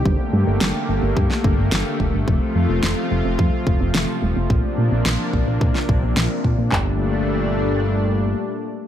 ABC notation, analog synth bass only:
X:1
M:4/4
L:1/16
Q:1/4=108
K:Gm
V:1 name="Analog synth bass" clef=bass
G,,, z G,, G,,, G,,, z G,,, G,,, G,, z G,,, G,,, G,,, z F,,, G,,, | F,,, z F,, F,,, F,,, z F,,, F,,, F,, z F,,, F,,, F,,, z E,,, F,,, | B,,, z B,, B,,, B,,, z B,,, B,,, B,, z B,,, B,,, B,,, z B,, B,, | G,,,12 z4 |]